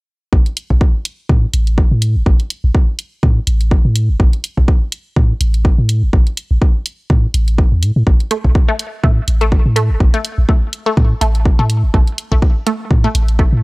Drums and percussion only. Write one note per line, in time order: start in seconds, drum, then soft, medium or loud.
0.33 kick loud
0.46 closed hi-hat soft
0.57 closed hi-hat medium
0.70 kick medium
0.81 kick loud
1.05 closed hi-hat medium
1.29 kick loud
1.54 closed hi-hat medium
1.67 closed hi-hat soft
1.78 kick loud
2.02 closed hi-hat medium
2.26 kick loud
2.40 closed hi-hat soft
2.50 closed hi-hat medium
2.75 kick loud
2.99 closed hi-hat medium
3.23 kick loud
3.47 closed hi-hat medium
3.61 closed hi-hat soft
3.71 kick loud
3.96 closed hi-hat medium
4.20 kick loud
4.33 closed hi-hat soft
4.44 closed hi-hat medium
4.57 kick medium
4.68 kick loud
4.92 closed hi-hat medium
5.16 kick loud
5.41 closed hi-hat medium
5.54 closed hi-hat soft
5.65 kick loud
5.89 closed hi-hat medium
6.13 kick loud
6.27 closed hi-hat soft
6.37 closed hi-hat medium
6.62 kick loud
6.86 closed hi-hat medium
7.10 kick loud
7.34 closed hi-hat medium
7.48 closed hi-hat soft
7.58 kick loud
7.83 closed hi-hat medium
8.07 kick loud
8.20 closed hi-hat soft
8.31 closed hi-hat medium
8.44 kick medium
8.55 kick loud
8.79 closed hi-hat medium
9.04 kick loud
9.28 closed hi-hat medium
9.41 closed hi-hat soft
9.52 kick loud
9.76 closed hi-hat medium
10.00 kick loud
10.14 closed hi-hat soft
10.25 closed hi-hat medium
10.49 kick loud
10.73 closed hi-hat medium
10.97 kick loud
11.21 closed hi-hat medium
11.35 closed hi-hat soft
11.46 kick loud
11.70 closed hi-hat medium
11.94 kick loud
12.07 closed hi-hat soft
12.18 closed hi-hat medium
12.32 kick medium
12.42 kick loud
12.67 closed hi-hat medium
12.91 kick loud
13.15 closed hi-hat medium
13.28 closed hi-hat soft
13.39 kick loud